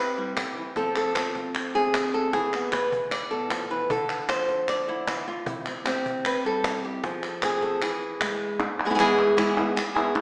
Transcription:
Already playing: C3 C4 B4
0.18 G3 E4
0.36 D3 G4, cajon slap, clap
0.57 E3
0.76 F3 C4 F4 A4, cajon bass, cajon slap
0.96 A4, clap
1.15 C4 F4, cajon slap, clap
1.35 F4, cajon bass, cajon slap
1.55 clap
1.75 C3 G#4
1.94 cajon slap, clap
2.14 A4
2.33 E3 G#4, cajon bass, cajon slap
2.53 B3, clap
2.72 B4, cajon slap, clap
2.92 cajon bass
3.11 D5, clap
3.31 B2 A4
3.51 F3, cajon slap, clap
3.70 E3 B4, cajon slap
3.90 D3 A4, cajon bass
4.10 clap
4.29 F3 C5, cajon slap, clap
4.49 A4, cajon bass, cajon slap
4.68 D5, clap
4.88 D3 E4
5.07 E3, cajon slap, clap
5.28 D3 F4
5.46 C3 E4, cajon bass
5.66 C4, clap
5.86 C4 G4, cajon slap, clap
6.06 cajon bass
6.25 B4, clap
6.45 G3 A4
6.64 E4, cajon slap, clap
6.84 G4, cajon slap
7.04 F3 G#4, cajon bass, cajon slap
7.23 A4, clap
7.43 C4 G#4, cajon slap, clap
7.62 A4, cajon bass, cajon slap
7.82 E3 G#4, clap
8.21 G#3 E4, cajon slap, clap
8.41 cajon slap
8.60 muted nylon-string guitar stroke, clap
8.80 clap
8.85 G#3 B3 E4 G#4
8.90 G#3 B3 E4 G#4
8.94 G#3 B3 E4 G#4
8.99 E3 G#3 B3 E4 G#4, clap
9.19 clap
9.37 E3 G#3 B3 E4 G#4, clap
9.57 B3 E4 G#4, clap
9.76 muted nylon-string guitar stroke, clap
9.95 B3 E4 G#4, clap
10.15 muted nylon-string guitar stroke, clap

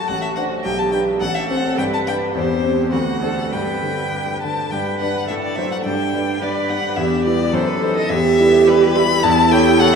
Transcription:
Already playing: F#2 F#3 A3 F#4
0.08 A1 F#5
0.22 E5
0.36 D4 C5 F#5
0.64 B1 G4 G5
0.79 A5
0.92 D4 B4 G5
1.20 A1 A4 F#5
1.35 E5
1.50 C4 C5 F#5
1.78 G2 B4 G5
1.94 A5
2.07 D4 B4 G5
2.35 E2 G4 C5
2.64 C4 C5
2.92 D2 F#4 F#5
3.22 D4 A4 C5
3.52 G2 B4 G5
3.82 D3
4.13 G3
4.42 D3 A5
4.71 G2 B4 G5
5.00 G3 D4 B4 F#5
5.28 A2 A4 E5
5.43 D5
5.56 F#3 D4 C5 E5
5.72 F#5
5.84 G2 D4 G5
6.14 G3 D4 B4
6.42 G3 D4 B4 D5
6.69 G3 D4 B4 F#5
6.96 E2 G4 E5
7.25 G3 E4 B4 D5
7.53 F#2 A4 C5
7.68 B4
7.82 A3 D#4 B4 C5
7.97 D#5
8.09 E2 G4 E5
8.39 G3 E4 B4
8.67 G3 E4 B4
8.94 G3 E4 B4 B5
9.23 E2 E4 A5
9.51 A3 G4 C#5 G5
9.79 A3 G4 A4 C#5 F#5

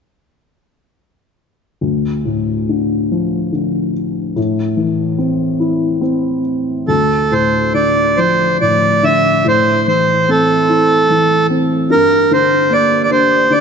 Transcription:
1.81 D2
2.25 A2
2.69 D3
3.12 F3
3.52 D3
4.36 A2
4.77 E3
5.18 C4
5.60 E4
6.01 C4
6.88 D2 A4
7.31 A2 C5
7.74 D3 D5
8.17 F3 C5
8.61 A2 D5
9.03 D3 E5
9.45 A2 C5
9.88 E3 C5
10.28 C4 A4
10.69 E4
11.10 E3
11.50 C4
11.90 G2 A#4
12.31 D3 C5
12.70 A#3 D5
13.04 D5
13.10 D4 C5
13.50 D3 D5

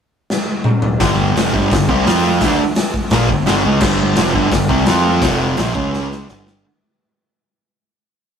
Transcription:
0.30 snare
0.64 mid tom
0.82 floor tom
1.00 G1 G2 D3 G3, kick, snare, open hi-hat
1.35 F1 F2 C3 F3, snare, open hi-hat
1.52 G1 G2 D3 G3, kick
1.71 G1 G2 D3, kick, snare, open hi-hat
1.89 C2 C3 G3 C4, kick
2.06 F2 F3 C4 F4, snare, open hi-hat
2.41 D2 D3 A3, kick, snare, open hi-hat
2.45 D4
2.75 snare, open hi-hat
2.94 kick
3.10 A#1 A#2 F3 A#3, kick, snare, open hi-hat
3.29 G1 G2 D3, kick
3.46 G1 G2 D3 G3, snare, open hi-hat
3.64 C#2 C#3 G#3 C#4
3.81 G1 G2 D3 G3, kick, snare, crash
4.16 F1 F2 C3 F3, snare, open hi-hat
4.34 G1 G2 D3 G3, kick
4.51 G1 G2 D3, kick, snare, open hi-hat
4.69 C2 C3 G3 C4, kick
4.86 F2 F3 C4 F4, snare, open hi-hat
5.21 F1 F2 C3 F3, kick, snare, open hi-hat
5.57 A#1 A#2 F3 A#3, snare, open hi-hat
5.74 C#2 C#3 G#3 C#4, kick
5.93 snare
6.11 snare
6.28 G1 G2 D3 G3, snare
6.47 snare

